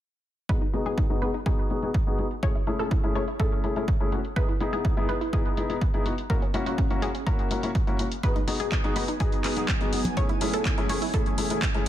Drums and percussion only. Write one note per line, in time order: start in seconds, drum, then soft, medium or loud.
0.49 kick loud
0.61 closed hi-hat soft
0.73 closed hi-hat medium
0.98 kick loud
1.10 closed hi-hat soft
1.22 closed hi-hat medium
1.34 closed hi-hat soft
1.46 kick loud
1.58 closed hi-hat soft
1.70 closed hi-hat medium
1.82 closed hi-hat medium
1.94 kick loud
2.07 closed hi-hat soft
2.18 closed hi-hat medium
2.31 closed hi-hat medium
2.43 kick loud
2.55 closed hi-hat soft
2.67 closed hi-hat medium
2.79 closed hi-hat soft
2.91 kick loud
3.04 closed hi-hat soft
3.15 closed hi-hat medium
3.28 closed hi-hat soft
3.40 kick loud
3.52 closed hi-hat soft
3.64 closed hi-hat medium
3.76 closed hi-hat medium
3.88 kick loud
3.88 closed hi-hat soft
4.00 closed hi-hat soft
4.12 closed hi-hat medium
4.25 closed hi-hat soft
4.36 kick loud
4.36 closed hi-hat soft
4.49 closed hi-hat soft
4.60 closed hi-hat medium
4.73 closed hi-hat soft
4.85 kick loud
4.85 closed hi-hat soft
4.97 closed hi-hat soft
5.09 closed hi-hat medium
5.21 closed hi-hat soft
5.33 kick loud
5.33 closed hi-hat soft
5.46 closed hi-hat soft
5.57 closed hi-hat medium
5.70 closed hi-hat soft
5.81 kick loud
5.81 closed hi-hat soft
5.94 closed hi-hat soft
6.06 closed hi-hat medium
6.18 closed hi-hat soft
6.30 kick loud
6.30 closed hi-hat soft
6.42 closed hi-hat soft
6.54 closed hi-hat medium
6.66 closed hi-hat soft
6.78 kick loud
6.78 closed hi-hat soft
6.90 closed hi-hat soft
7.02 closed hi-hat medium
7.15 closed hi-hat soft
7.27 kick loud
7.27 closed hi-hat soft
7.39 closed hi-hat soft
7.51 closed hi-hat medium
7.63 closed hi-hat soft
7.75 kick loud
7.75 closed hi-hat soft
7.87 closed hi-hat soft
7.99 closed hi-hat medium
8.12 closed hi-hat soft
8.23 kick loud
8.23 closed hi-hat soft
8.36 closed hi-hat soft
8.36 high conga medium
8.48 open hi-hat loud
8.60 closed hi-hat soft
8.72 kick loud
8.72 clap loud
8.72 closed hi-hat soft
8.84 closed hi-hat soft
8.96 open hi-hat loud
8.96 high conga soft
9.08 closed hi-hat soft
9.20 kick loud
9.20 closed hi-hat soft
9.32 closed hi-hat soft
9.44 clap medium
9.44 open hi-hat loud
9.57 closed hi-hat soft
9.68 kick loud
9.68 clap loud
9.68 closed hi-hat soft
9.81 closed hi-hat soft
9.93 open hi-hat loud
10.05 closed hi-hat soft
10.05 low conga medium
10.17 kick loud
10.17 closed hi-hat soft
10.29 closed hi-hat soft
10.29 high conga medium
10.41 open hi-hat medium
10.54 closed hi-hat soft
10.65 kick loud
10.65 clap loud
10.65 closed hi-hat soft
10.78 closed hi-hat soft
10.89 open hi-hat loud
10.89 high conga medium
11.02 open hi-hat medium
11.14 kick loud
11.14 closed hi-hat soft
11.26 closed hi-hat soft
11.38 open hi-hat medium
11.50 closed hi-hat soft
11.62 kick loud
11.62 clap loud
11.62 closed hi-hat soft
11.74 closed hi-hat soft